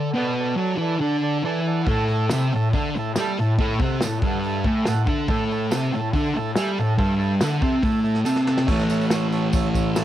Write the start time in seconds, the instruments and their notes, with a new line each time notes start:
Already playing: transistor combo organ D5 A5
0.14 distorted electric guitar B2 B3, transistor combo organ A4 D5 A5
0.40 transistor combo organ A4 D5 A5
0.56 distorted electric guitar F#3 F#4, transistor combo organ A4 D5 A5
0.77 distorted electric guitar E3 E4, transistor combo organ A4 D5
0.81 transistor combo organ A5
1.00 distorted electric guitar D3 D4, transistor combo organ A4 D5 A5
1.22 transistor combo organ A4 D5 A5
1.43 distorted electric guitar E3 E4, transistor combo organ A4 D5 G#5 A5
1.67 transistor combo organ A4 D5 F#5 A5
1.86 distorted electric guitar A2 A3, kick, open hi-hat
1.90 transistor combo organ A4 E5 A5
2.08 transistor combo organ E5, open hi-hat
2.12 transistor combo organ A4 A5
2.29 distorted electric guitar C3 C4, transistor combo organ A4 E5, snare, tambourine
2.34 transistor combo organ B5
2.52 distorted electric guitar A2, transistor combo organ A4 E5, open hi-hat
2.56 transistor combo organ A5
2.73 distorted electric guitar D3 D4, transistor combo organ A4 E5, kick, open hi-hat
2.78 transistor combo organ A5
2.95 distorted electric guitar A2, transistor combo organ E5 A5, open hi-hat
2.99 transistor combo organ A4
3.16 distorted electric guitar G3 G4, snare, open hi-hat, tambourine
3.20 transistor combo organ A4 E5 A5
3.37 distorted electric guitar A2, transistor combo organ A4 A5, open hi-hat
3.41 transistor combo organ E5
3.58 distorted electric guitar A2 A3, transistor combo organ A4 E5 A5, kick, open hi-hat
3.80 distorted electric guitar C3 C4, transistor combo organ A4 F#5, kick, open hi-hat
3.84 transistor combo organ E5
4.01 distorted electric guitar A2, transistor combo organ A4 A5, snare, open hi-hat, tambourine
4.05 transistor combo organ E5
4.22 distorted electric guitar G2 G3, transistor combo organ A4 E5, kick, open hi-hat
4.27 transistor combo organ F#5
4.43 transistor combo organ A4 E5 A5, open hi-hat
4.64 distorted electric guitar A2 A3, transistor combo organ A4 E5 G#5 A5, kick, open hi-hat
4.76 transistor combo organ G#5
4.85 distorted electric guitar A2, transistor combo organ A4 E5 F#5 A5, snare, open hi-hat, tambourine
5.07 distorted electric guitar D3 D4, transistor combo organ A4 E5 A5, kick, open hi-hat
5.28 distorted electric guitar A2 A3, transistor combo organ A4 E5 A5, kick, open hi-hat
5.51 transistor combo organ A4 E5 A5, open hi-hat
5.71 distorted electric guitar C3 C4, transistor combo organ A4 E5 A5, snare, open hi-hat, tambourine
5.93 distorted electric guitar A2, transistor combo organ A4 E5 A5, open hi-hat
6.13 distorted electric guitar D3 D4, transistor combo organ A4 E5 A5, kick, open hi-hat
6.35 distorted electric guitar A2, transistor combo organ A4 E5 A5, open hi-hat
6.55 distorted electric guitar G3 G4, transistor combo organ A4 E5 G#5, snare, open hi-hat, tambourine
6.78 distorted electric guitar A2, transistor combo organ A4 E5 A5, open hi-hat
6.98 distorted electric guitar G2 G3, transistor combo organ A4 E5 A5, kick, open hi-hat
7.18 transistor combo organ A4 E5 A5, open hi-hat
7.39 distorted electric guitar D3 D4, transistor combo organ A4 E5 F#5, snare, open hi-hat, tambourine
7.61 distorted electric guitar C3 C4, transistor combo organ A4 E5 A5, kick, open hi-hat
7.83 distorted electric guitar A2 A3, transistor combo organ A4 E5 A5, kick, open hi-hat
8.04 transistor combo organ A4 E5 A5, open hi-hat
8.15 snare
8.24 distorted electric guitar C3 C4, transistor combo organ A4 E5 A5, snare, tambourine
8.36 snare
8.44 transistor combo organ A4 E5 A5, snare
8.58 snare
8.67 distorted electric guitar A2 E3, transistor combo organ C#5 E5 A5, kick, crash
8.73 distorted electric guitar A3
8.79 tambourine
8.89 transistor combo organ C#5 E5 A5, tambourine, crash
9.01 tambourine
9.10 transistor combo organ C#5 E5 A5, snare, tambourine, crash
9.32 transistor combo organ C#5 E5 A5, tambourine, crash
9.53 transistor combo organ C#5 E5 A5, kick, tambourine, crash
9.74 transistor combo organ C#5 E5 A5, kick, tambourine, crash
9.95 transistor combo organ C#5 E5 A5, snare, tambourine, crash